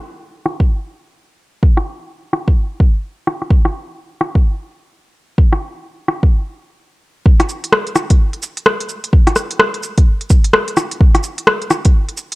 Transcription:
0.46 cross-stick medium
0.60 kick medium
1.63 kick loud
1.77 cross-stick medium
2.33 cross-stick medium
2.48 kick medium
2.80 kick loud
3.27 cross-stick medium
3.42 cross-stick soft
3.50 kick loud
3.65 cross-stick medium
4.21 cross-stick medium
4.35 kick medium
5.38 kick loud
5.53 cross-stick medium
6.08 cross-stick medium
6.23 kick medium
7.26 kick loud
7.40 cross-stick medium
7.40 closed hi-hat soft
7.49 cabasa medium
7.64 closed hi-hat medium
7.72 cross-stick loud
7.87 closed hi-hat soft
7.96 cross-stick medium
7.96 cabasa medium
8.10 kick loud
8.10 closed hi-hat medium
8.33 closed hi-hat soft
8.43 cabasa medium
8.57 closed hi-hat medium
8.66 cross-stick loud
8.80 closed hi-hat soft
8.89 cabasa medium
9.04 closed hi-hat medium
9.13 kick loud
9.27 cross-stick medium
9.27 closed hi-hat soft
9.36 cross-stick medium
9.36 cabasa medium
9.51 closed hi-hat medium
9.59 cross-stick loud
9.74 closed hi-hat soft
9.83 cabasa medium
9.98 kick loud
9.98 closed hi-hat medium
10.21 closed hi-hat soft
10.30 kick loud
10.30 cabasa medium
10.44 closed hi-hat medium
10.53 cross-stick loud
10.68 closed hi-hat soft
10.77 cross-stick medium
10.77 cabasa medium
10.91 closed hi-hat medium
11.01 kick loud
11.15 cross-stick medium
11.15 closed hi-hat soft
11.23 cabasa medium
11.38 closed hi-hat medium
11.47 cross-stick loud
11.62 closed hi-hat soft
11.71 cross-stick medium
11.71 cabasa medium
11.85 kick loud
11.85 closed hi-hat medium
12.09 closed hi-hat soft
12.17 cabasa medium
12.32 closed hi-hat medium

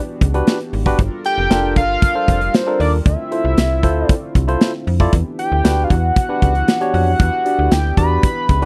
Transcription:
0.00 0.95 E3 medium
0.00 0.95 B3 medium
0.00 0.95 D4 medium
0.00 0.95 F#4 medium
0.00 0.95 G4 medium
0.00 0.47 D5 loud
0.21 0.43 C#2 loud
0.21 kick medium
0.21 closed hi-hat medium
0.34 0.58 D4 loud
0.34 0.58 F#4 medium
0.34 0.58 G4 medium
0.34 0.58 B4 loud
0.34 closed hi-hat medium
0.47 snare loud
0.47 closed hi-hat medium
0.60 closed hi-hat soft
0.73 0.94 G#1 medium
0.73 open hi-hat medium
0.86 0.99 D4 loud
0.86 0.99 F#4 loud
0.86 0.99 G4 medium
0.86 0.99 B4 loud
0.86 kick medium
0.99 1.09 G1 loud
0.99 3.04 G3 medium
0.99 3.04 D4 medium
0.99 5.09 F4 medium
0.99 3.04 A4 medium
0.99 3.04 A#4 medium
0.99 kick loud
0.99 closed hi-hat loud
1.25 1.73 G5 loud
1.25 closed hi-hat medium
1.38 1.48 F1 medium
1.50 1.78 F1 medium
1.50 1.80 D4 medium
1.50 1.80 F4 medium
1.50 1.80 A4 medium
1.50 1.80 A#4 medium
1.50 snare loud
1.50 closed hi-hat loud
1.76 1.98 G1 medium
1.76 2.57 F5 loud
1.76 kick loud
1.76 closed hi-hat medium
2.02 kick loud
2.02 closed hi-hat loud
2.15 2.39 D4 medium
2.15 2.39 F4 medium
2.15 2.39 A4 medium
2.15 2.39 C5 medium
2.28 2.49 F1 loud
2.28 kick medium
2.28 closed hi-hat medium
2.41 closed hi-hat medium
2.54 2.80 C5 loud
2.54 snare loud
2.54 closed hi-hat medium
2.67 2.96 D4 loud
2.67 2.97 F4 medium
2.67 2.97 A4 medium
2.67 2.97 A#4 loud
2.80 3.01 D#2 medium
2.80 2.92 D5 medium
2.80 open hi-hat medium
3.06 3.16 D2 loud
3.06 5.11 D3 medium
3.06 5.11 A3 medium
3.06 5.11 C4 medium
3.06 5.11 E4 medium
3.06 4.07 E5 loud
3.06 kick loud
3.06 closed hi-hat loud
3.31 3.55 E4 medium
3.31 3.55 F4 medium
3.31 3.55 A4 medium
3.31 3.56 C5 medium
3.31 closed hi-hat medium
3.45 3.55 C2 medium
3.58 3.85 C2 medium
3.58 snare loud
3.58 closed hi-hat loud
3.83 4.05 D2 loud
3.83 4.13 E4 loud
3.83 4.13 F4 medium
3.83 4.13 A4 medium
3.83 4.13 C5 loud
3.83 kick medium
3.83 closed hi-hat medium
4.07 4.57 D5 loud
4.07 kick loud
4.07 closed hi-hat loud
4.35 4.56 C2 loud
4.35 kick medium
4.35 closed hi-hat medium
4.48 4.72 E4 medium
4.48 4.72 F4 medium
4.48 4.72 A4 medium
4.48 4.72 C5 loud
4.48 closed hi-hat soft
4.61 snare loud
4.61 closed hi-hat medium
4.87 5.08 F2 medium
4.87 open hi-hat medium
5.00 5.13 E4 loud
5.00 5.13 F4 loud
5.00 5.13 A4 medium
5.00 5.13 D5 loud
5.00 kick medium
5.13 5.24 E2 loud
5.13 8.65 E3 medium
5.13 8.65 B3 medium
5.13 8.65 D4 medium
5.13 8.65 E4 medium
5.13 8.65 G4 medium
5.13 kick loud
5.13 closed hi-hat loud
5.39 5.85 G5 medium
5.39 closed hi-hat medium
5.52 5.62 D2 medium
5.64 5.86 D2 medium
5.64 5.94 D4 medium
5.64 5.94 F#4 medium
5.64 5.94 G4 medium
5.64 5.94 B4 medium
5.64 snare loud
5.64 closed hi-hat loud
5.84 5.92 F5 medium
5.90 6.12 E2 loud
5.90 6.93 F#5 loud
5.90 kick medium
5.90 closed hi-hat medium
6.16 kick loud
6.16 closed hi-hat loud
6.29 6.53 D4 medium
6.29 6.53 F#4 medium
6.29 6.53 G4 medium
6.29 6.53 B4 medium
6.42 6.63 C#2 medium
6.42 kick loud
6.42 closed hi-hat medium
6.55 closed hi-hat soft
6.68 snare loud
6.68 closed hi-hat medium
6.81 7.10 D4 medium
6.81 7.11 F#4 medium
6.81 7.11 G4 medium
6.81 7.11 C#5 loud
6.81 closed hi-hat soft
6.94 7.15 F2 medium
6.94 7.73 F#5 loud
6.94 open hi-hat medium
7.20 7.30 E2 loud
7.20 kick loud
7.20 closed hi-hat loud
7.45 7.69 D4 medium
7.45 7.69 F#4 medium
7.45 7.69 G4 medium
7.45 7.70 D5 medium
7.45 closed hi-hat medium
7.59 7.69 D2 medium
7.71 7.93 D2 loud
7.71 7.97 G5 loud
7.71 snare loud
7.71 closed hi-hat loud
7.97 8.19 E2 medium
7.97 8.27 D4 medium
7.97 8.27 F#4 medium
7.97 8.27 G4 medium
7.97 8.27 D5 loud
7.97 8.65 B5 loud
7.97 kick medium
7.97 closed hi-hat medium
8.23 kick loud
8.23 closed hi-hat loud
8.49 8.65 C#2 loud
8.49 kick loud
8.49 closed hi-hat medium
8.62 8.65 D4 medium
8.62 8.65 F#4 medium
8.62 8.65 G4 medium

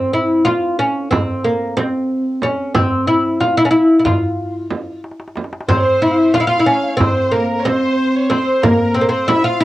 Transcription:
0.00 0.13 C4 medium
0.14 0.45 E4 medium
0.45 0.79 F4 medium
0.45 darbuka tek medium
0.45 frame drum medium
0.79 1.10 C#4 medium
0.79 darbuka ka soft
1.11 1.45 C4 medium
1.11 darbuka dum medium
1.11 frame drum medium
1.44 1.76 A#3 medium
1.77 2.45 C4 medium
1.77 darbuka tek medium
1.77 frame drum medium
2.10 darbuka ka soft
2.42 2.74 C#4 medium
2.42 frame drum medium
2.74 3.07 C4 medium
2.74 frame drum medium
2.74 darbuka dum medium
3.07 3.40 E4 medium
3.07 darbuka ka soft
3.40 3.57 F4 medium
3.40 darbuka tek medium
3.40 frame drum medium
3.57 3.65 E4 medium
3.65 3.70 C#4 medium
3.71 3.98 E4 medium
3.99 4.04 E4 medium
4.05 5.00 F4 medium
4.05 darbuka dum medium
4.05 frame drum medium
4.38 darbuka ka soft
4.70 darbuka tek medium
4.70 frame drum medium
5.04 darbuka tek medium
5.11 darbuka ka medium
5.20 darbuka tek medium
5.28 darbuka ka medium
5.36 darbuka tek medium
5.36 frame drum medium
5.44 darbuka ka medium
5.53 darbuka tek medium
5.61 darbuka ka medium
5.68 6.01 C4 medium
5.68 6.31 C5 medium
5.68 5.78 C5 medium
5.68 darbuka dum medium
5.68 frame drum medium
5.77 5.86 C#5 medium
5.84 6.05 C5 medium
6.02 6.33 E4 medium
6.02 6.12 E5 medium
6.11 6.19 F5 medium
6.18 6.38 E5 medium
6.34 6.40 F4 medium
6.34 6.47 F5 medium
6.34 6.49 F5 medium
6.34 darbuka tek medium
6.34 frame drum medium
6.40 6.47 E4 medium
6.47 6.59 F4 medium
6.47 6.97 F5 medium
6.47 6.70 F5 medium
6.59 6.66 E4 medium
6.66 6.96 C#4 medium
6.66 7.02 C#5 medium
6.97 7.32 C4 medium
6.97 7.33 C5 medium
6.97 frame drum medium
6.97 darbuka dum medium
7.01 7.36 C5 medium
7.31 7.65 A#3 medium
7.31 7.67 A#4 medium
7.31 7.61 A#4 medium
7.59 7.67 C#5 medium
7.65 8.28 C4 medium
7.65 8.17 C5 medium
7.65 8.31 C5 medium
7.65 darbuka tek medium
7.65 frame drum medium
7.99 darbuka ka soft
8.16 8.32 C#5 medium
8.30 8.61 C4 medium
8.30 8.65 C5 medium
8.30 8.62 C5 medium
8.30 darbuka tek medium
8.30 frame drum medium
8.63 8.97 A#3 medium
8.63 8.98 A#4 medium
8.63 8.97 A#4 medium
8.63 frame drum medium
8.63 darbuka dum medium
8.94 9.03 C4 medium
8.94 9.09 C5 medium
8.94 9.10 C5 medium
9.01 9.10 A#3 medium
9.09 9.28 C4 medium
9.09 9.30 C5 medium
9.09 9.28 C5 medium
9.28 9.44 E4 medium
9.28 9.43 E5 medium
9.28 9.46 E5 medium
9.28 darbuka tek medium
9.28 frame drum medium
9.44 9.60 F4 medium
9.44 9.61 F5 medium
9.44 9.62 F5 medium
9.60 9.64 E4 loud
9.60 9.64 E5 medium

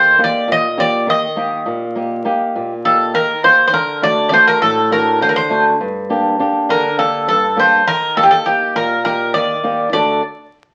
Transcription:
0.00 0.17 D#3 soft
0.00 0.17 A#3 soft
0.00 0.18 D#4 soft
0.00 0.18 G4 medium
0.00 0.19 C5 medium
0.18 0.66 A#3 medium
0.18 0.66 D#4 soft
0.18 0.67 G4 medium
0.24 0.52 D5 medium
0.48 1.05 A#2 medium
0.52 0.78 D#5 medium
0.77 1.25 A#3 soft
0.77 1.25 D#4 soft
0.77 1.25 G4 medium
0.77 1.06 D5 medium
1.07 1.64 D#3 medium
1.07 1.64 D#5 medium
1.36 1.84 A#3 medium
1.36 1.84 D#4 soft
1.36 1.84 G4 medium
1.66 2.23 A#2 medium
1.95 2.23 A#3 soft
1.95 2.24 D#4 soft
1.95 2.24 G4 medium
2.25 2.72 A#3 medium
2.25 2.72 D#4 soft
2.25 2.73 G4 medium
2.56 3.13 A#2 medium
2.85 3.32 A#3 soft
2.85 3.32 D#4 soft
2.85 3.32 G4 soft
2.85 3.12 A4 medium
3.14 3.71 D#3 medium
3.14 3.42 A#4 medium
3.44 3.67 A#3 soft
3.44 3.68 D#4 soft
3.44 3.68 G4 medium
3.44 3.65 C5 medium
3.67 3.73 C5 medium
3.73 4.30 D3 medium
3.73 4.03 A#4 medium
4.02 4.30 A3 medium
4.02 4.31 D4 soft
4.02 4.31 F#4 medium
4.02 4.28 D5 medium
4.29 4.79 A3 medium
4.29 4.79 D4 medium
4.29 4.79 F#4 medium
4.29 4.33 D5 medium
4.33 4.47 C5 medium
4.47 4.61 A#4 medium
4.62 5.19 A2 medium
4.62 4.89 A4 medium
4.90 5.38 A3 soft
4.90 5.38 D4 soft
4.90 5.38 F#4 soft
4.90 5.19 A#4 medium
5.21 5.78 D3 medium
5.21 5.28 C5 medium
5.29 5.36 A#4 medium
5.36 5.64 C5 medium
5.50 5.74 A3 medium
5.50 5.74 D4 soft
5.50 5.74 F#4 medium
5.81 6.38 G2 medium
6.10 6.38 A#3 medium
6.10 6.39 D4 soft
6.10 6.39 G4 medium
6.39 6.87 A#3 medium
6.39 6.87 D4 soft
6.39 6.87 G4 medium
6.69 7.26 D3 medium
6.69 6.97 A#4 medium
6.97 7.45 A#3 soft
6.97 7.45 D4 soft
6.97 7.46 G4 medium
6.97 7.27 A4 medium
7.28 7.85 G2 medium
7.28 7.59 A4 medium
7.56 7.80 A#3 medium
7.56 7.81 D4 soft
7.56 7.81 G4 medium
7.56 7.86 C5 medium
7.87 8.44 D#3 medium
7.87 8.17 A#4 medium
8.17 8.45 A#3 soft
8.17 8.46 D#4 soft
8.17 8.46 G4 medium
8.17 8.23 A4 medium
8.23 8.30 G4 medium
8.31 8.45 A4 medium
8.46 8.93 A#3 medium
8.46 8.94 D#4 soft
8.46 8.73 G4 medium
8.46 8.94 G4 medium
8.76 9.33 A#2 medium
8.76 9.03 A#4 medium
9.05 9.52 A#3 soft
9.05 9.52 D#4 soft
9.05 9.53 G4 soft
9.05 9.32 A#4 medium
9.34 9.92 D#3 medium
9.34 9.89 D5 medium
9.63 9.87 A#3 medium
9.63 9.88 D#4 soft
9.63 9.88 G4 medium
9.92 10.20 D3 soft
9.92 10.20 A3 soft
9.92 10.21 D4 soft
9.92 10.21 F#4 soft
9.92 10.21 A4 soft
9.92 10.21 D5 medium

